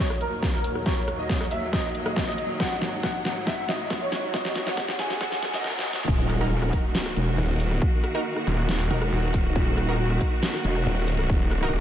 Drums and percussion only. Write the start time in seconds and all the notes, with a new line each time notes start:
0.10 cross-stick
0.21 closed hi-hat
0.43 kick, snare
0.64 open hi-hat
0.75 cross-stick
0.86 kick, snare
1.08 cross-stick, closed hi-hat
1.29 kick, snare
1.41 cross-stick
1.51 open hi-hat
1.73 kick, snare
1.95 closed hi-hat
2.06 cross-stick
2.16 kick, snare
2.38 open hi-hat
2.60 kick, snare
2.82 snare, closed hi-hat
3.03 kick, snare
3.25 snare, open hi-hat
3.47 kick, snare
3.69 snare, closed hi-hat
3.90 kick, snare
4.12 snare, open hi-hat
4.34 kick, snare
4.45 snare
4.56 snare, closed hi-hat
4.67 snare
4.77 kick, snare
4.88 snare
4.99 snare, open hi-hat
5.10 snare
5.21 kick, snare
5.32 snare
5.43 snare, closed hi-hat
5.54 snare
5.64 snare
5.79 snare
5.93 snare
6.08 kick, crash
6.30 cross-stick, closed hi-hat
6.62 cross-stick
6.73 kick, closed hi-hat
6.95 snare
7.06 cross-stick
7.16 closed hi-hat
7.60 open hi-hat
7.71 cross-stick
7.82 kick
8.04 cross-stick, closed hi-hat
8.36 cross-stick
8.47 closed hi-hat
8.69 snare
8.91 closed hi-hat
9.02 cross-stick
9.34 kick, open hi-hat
9.56 kick
9.77 cross-stick, closed hi-hat
10.10 cross-stick
10.21 kick, closed hi-hat
10.43 snare
10.54 cross-stick
10.64 closed hi-hat
11.08 open hi-hat
11.19 cross-stick
11.30 kick
11.51 cross-stick, closed hi-hat